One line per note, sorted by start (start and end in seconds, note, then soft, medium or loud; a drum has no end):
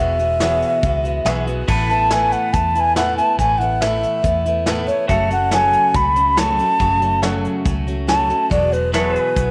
0.00 0.63 E1 medium
0.00 0.19 E2 medium
0.00 0.19 B2 medium
0.00 0.19 E3 medium
0.00 0.19 G#3 medium
0.00 0.18 B3 medium
0.00 0.18 F#4 medium
0.00 1.65 G#4 medium
0.00 1.65 B4 medium
0.00 1.45 E5 medium
0.19 0.40 E3 soft
0.19 0.41 G#3 soft
0.19 0.41 B3 soft
0.19 0.40 F#4 soft
0.19 closed hi-hat medium
0.40 0.83 E2 medium
0.40 0.84 B2 medium
0.40 0.82 E3 medium
0.40 0.83 G#3 medium
0.40 0.84 B3 medium
0.40 0.84 F#4 medium
0.40 0.76 G#4 medium
0.40 0.76 B4 medium
0.40 0.76 C#5 medium
0.40 snare loud
0.40 closed hi-hat medium
0.62 closed hi-hat medium
0.83 1.19 C#2 medium
0.83 1.05 E3 medium
0.83 1.05 G#3 medium
0.83 1.04 B3 medium
0.83 1.02 F#4 medium
0.83 kick loud
0.83 closed hi-hat medium
1.04 1.24 E3 soft
1.04 1.25 G#3 soft
1.04 1.25 B3 medium
1.04 1.25 F#4 medium
1.04 closed hi-hat medium
1.25 1.62 B1 medium
1.25 1.47 E2 medium
1.25 1.47 B2 medium
1.25 1.47 E3 medium
1.25 1.47 G#3 medium
1.25 1.46 B3 loud
1.25 1.45 F#4 loud
1.25 1.62 G#4 medium
1.25 1.62 B4 medium
1.25 1.62 E5 loud
1.25 snare loud
1.25 closed hi-hat medium
1.47 1.67 E3 medium
1.47 1.68 G#3 medium
1.47 1.68 B3 medium
1.47 1.68 F#4 medium
1.47 closed hi-hat medium
1.68 2.34 A1 medium
1.68 1.89 A2 medium
1.68 1.90 E3 medium
1.68 1.90 A3 medium
1.68 1.90 B3 medium
1.68 5.06 E4 medium
1.68 1.88 E4 loud
1.68 5.06 A4 medium
1.68 5.07 B4 medium
1.68 kick loud
1.68 crash medium
1.89 2.11 A3 soft
1.89 2.11 B3 soft
1.89 2.11 E4 soft
1.89 2.14 A5 medium
1.89 closed hi-hat medium
2.11 2.54 A2 medium
2.11 2.52 E3 medium
2.11 2.54 A3 medium
2.11 2.53 B3 medium
2.11 2.54 E4 medium
2.11 2.47 A4 medium
2.11 2.47 B4 medium
2.11 2.47 E5 medium
2.11 2.34 G#5 medium
2.11 snare loud
2.11 closed hi-hat medium
2.32 2.55 F#5 medium
2.32 closed hi-hat medium
2.53 3.19 E2 medium
2.53 2.75 E3 medium
2.53 2.75 A3 medium
2.53 2.76 B3 medium
2.53 2.74 E4 medium
2.53 2.75 A5 medium
2.53 kick loud
2.53 closed hi-hat medium
2.75 2.97 A3 soft
2.75 2.97 B3 soft
2.75 2.97 E4 medium
2.75 2.81 A5 medium
2.75 closed hi-hat medium
2.80 2.95 G#5 medium
2.96 3.18 A2 medium
2.96 3.18 E3 medium
2.96 3.19 A3 medium
2.96 3.18 B3 medium
2.96 3.17 E4 medium
2.96 3.32 A4 medium
2.96 3.32 B4 medium
2.96 3.32 E5 medium
2.96 3.17 F#5 medium
2.96 snare loud
2.96 closed hi-hat medium
3.17 3.39 A3 soft
3.17 3.39 B3 soft
3.17 3.39 E4 medium
3.17 3.38 A5 medium
3.17 closed hi-hat medium
3.39 4.04 A1 medium
3.39 3.61 A2 medium
3.39 3.61 E3 medium
3.39 3.61 A3 medium
3.39 3.60 B3 medium
3.39 3.58 E4 medium
3.39 3.60 G#5 medium
3.39 kick loud
3.39 closed hi-hat medium
3.58 3.81 B3 soft
3.58 3.81 E4 medium
3.58 3.83 F#5 medium
3.58 closed hi-hat medium
3.62 3.81 A3 soft
3.81 4.24 A2 medium
3.81 4.21 E3 medium
3.81 4.24 A3 medium
3.81 4.23 B3 medium
3.81 4.24 E4 loud
3.81 4.17 A4 medium
3.81 4.17 B4 medium
3.81 4.17 E5 medium
3.81 4.65 E5 medium
3.81 snare loud
3.81 closed hi-hat medium
4.03 closed hi-hat medium
4.23 4.89 E2 medium
4.23 4.45 E3 medium
4.23 4.46 A3 medium
4.23 4.46 B3 medium
4.23 4.44 E4 medium
4.23 kick loud
4.23 closed hi-hat medium
4.45 4.66 A3 medium
4.45 4.67 B3 medium
4.45 4.66 E4 medium
4.45 closed hi-hat medium
4.66 4.88 A2 medium
4.66 4.88 E3 medium
4.66 4.89 A3 loud
4.66 4.87 B3 loud
4.66 4.86 E4 loud
4.66 5.03 A4 medium
4.66 5.03 B4 medium
4.66 5.03 E5 loud
4.66 snare loud
4.66 closed hi-hat medium
4.87 5.08 A3 soft
4.87 5.09 B3 medium
4.87 5.09 E4 medium
4.87 5.08 C#5 medium
4.87 closed hi-hat medium
5.08 5.75 F#1 medium
5.08 5.31 F#2 medium
5.08 5.31 C#3 medium
5.08 5.31 F#3 medium
5.08 5.30 A3 medium
5.08 5.29 C#4 medium
5.08 8.47 F#4 medium
5.08 5.29 F#4 loud
5.08 8.47 A4 medium
5.08 8.48 C#5 medium
5.08 5.30 E5 medium
5.08 kick loud
5.08 closed hi-hat medium
5.30 5.52 F#3 soft
5.30 5.52 A3 medium
5.30 5.52 C#4 medium
5.30 5.52 F#4 medium
5.30 5.52 F#5 medium
5.30 closed hi-hat medium
5.51 5.95 F#2 medium
5.51 5.96 C#3 medium
5.51 5.94 F#3 medium
5.51 5.94 A3 medium
5.51 5.95 C#4 medium
5.51 5.96 F#4 medium
5.51 5.88 A4 medium
5.51 5.88 C#5 medium
5.51 5.88 F#5 medium
5.51 5.97 G#5 medium
5.51 snare loud
5.51 closed hi-hat medium
5.73 closed hi-hat medium
5.94 6.60 C#2 medium
5.94 6.16 F#3 medium
5.94 6.16 A3 medium
5.94 6.15 C#4 medium
5.94 6.14 F#4 medium
5.94 6.40 B5 medium
5.94 kick loud
5.94 closed hi-hat medium
6.15 6.36 F#3 soft
6.15 6.37 A3 soft
6.15 6.36 C#4 soft
6.15 6.37 F#4 soft
6.15 closed hi-hat medium
6.37 6.59 F#2 medium
6.37 6.59 C#3 medium
6.37 6.59 F#3 medium
6.37 6.59 A3 medium
6.37 6.58 C#4 medium
6.37 6.57 F#4 loud
6.37 6.74 A4 medium
6.37 6.74 C#5 medium
6.37 6.74 A5 medium
6.37 7.21 A5 loud
6.37 snare loud
6.37 closed hi-hat medium
6.59 6.79 F#3 soft
6.59 6.79 A3 soft
6.59 6.79 C#4 medium
6.59 6.79 F#4 medium
6.59 closed hi-hat medium
6.79 7.45 F#1 medium
6.79 7.01 F#2 medium
6.79 7.01 C#3 medium
6.79 7.01 F#3 medium
6.79 7.01 A3 medium
6.79 7.01 C#4 medium
6.79 7.00 F#4 medium
6.79 kick loud
6.79 closed hi-hat medium
7.01 7.22 F#3 medium
7.01 7.22 A3 medium
7.01 7.22 C#4 medium
7.01 7.22 F#4 medium
7.01 closed hi-hat medium
7.22 7.65 F#2 loud
7.22 7.66 C#3 medium
7.22 7.64 F#3 medium
7.22 7.64 A3 medium
7.22 7.65 C#4 loud
7.22 7.66 F#4 loud
7.22 7.59 A4 medium
7.22 7.59 C#5 medium
7.22 7.59 F#5 medium
7.22 snare loud
7.22 closed hi-hat medium
7.44 closed hi-hat medium
7.65 8.31 C#2 medium
7.65 7.87 F#3 medium
7.65 7.87 A3 medium
7.65 7.86 C#4 medium
7.65 7.85 F#4 medium
7.65 kick loud
7.65 closed hi-hat medium
7.87 8.07 F#3 soft
7.87 8.07 A3 medium
7.87 8.08 C#4 soft
7.87 8.08 F#4 medium
7.87 closed hi-hat medium
8.07 8.29 F#2 medium
8.07 8.30 C#3 medium
8.07 8.30 F#3 medium
8.07 8.29 A3 medium
8.07 8.29 C#4 medium
8.07 8.28 F#4 loud
8.07 8.45 A4 medium
8.07 8.44 C#5 medium
8.07 8.50 A5 loud
8.07 8.45 A5 medium
8.07 snare loud
8.07 closed hi-hat medium
8.29 8.50 F#3 soft
8.29 8.51 A3 soft
8.29 8.51 C#4 medium
8.29 8.51 F#4 medium
8.29 closed hi-hat medium
8.50 9.16 E1 medium
8.50 8.72 E2 medium
8.50 8.72 B2 medium
8.50 8.72 F#3 medium
8.50 8.72 G#3 medium
8.50 8.72 B3 medium
8.50 8.70 F#4 medium
8.50 8.74 D5 medium
8.50 kick loud
8.50 closed hi-hat medium
8.71 8.92 F#3 soft
8.71 8.92 G#3 soft
8.71 8.92 B3 medium
8.71 8.93 F#4 soft
8.71 8.93 B4 medium
8.71 closed hi-hat medium
8.92 9.36 E2 medium
8.92 9.36 B2 medium
8.92 9.35 F#3 medium
8.92 9.36 G#3 medium
8.92 9.36 B3 medium
8.92 9.51 E4 medium
8.92 9.38 F#4 medium
8.92 9.30 G#4 medium
8.92 9.15 A4 medium
8.92 9.30 B4 medium
8.92 9.51 B4 medium
8.92 9.20 C#5 medium
8.92 9.30 E5 medium
8.92 snare loud
8.92 closed hi-hat medium
9.15 9.51 G#4 medium
9.15 closed hi-hat medium
9.20 9.51 B4 medium
9.36 9.51 B1 medium
9.36 9.51 F#3 medium
9.36 9.51 G#3 medium
9.36 9.51 B3 medium
9.36 9.51 F#4 medium
9.36 kick loud
9.36 closed hi-hat loud